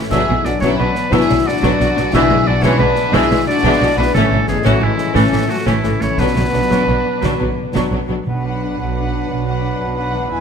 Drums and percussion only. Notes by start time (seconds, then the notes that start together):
0.11 concert bass drum, snare, crash
0.45 snare
0.62 concert bass drum, snare
0.95 snare
1.12 concert bass drum, snare
1.63 concert bass drum, snare
1.80 snare
1.97 snare
2.13 concert bass drum, snare
2.63 concert bass drum, snare
2.95 snare
3.13 concert bass drum, snare
3.64 concert bass drum, snare
4.15 concert bass drum, snare
4.47 snare
4.65 concert bass drum, snare
4.98 snare
5.15 concert bass drum, snare
5.66 concert bass drum, snare
5.84 snare
6.01 snare
6.18 concert bass drum, snare
6.71 concert bass drum, snare
7.23 concert bass drum, snare
7.75 concert bass drum, snare